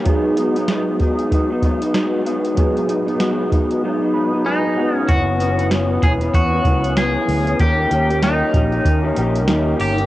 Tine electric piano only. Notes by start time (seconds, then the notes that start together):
0.04 F#3 B3 D#4
0.09 G#4
2.55 F#3 B3 D#4
2.59 G#4
4.14 B5
4.46 G#5
4.77 F#5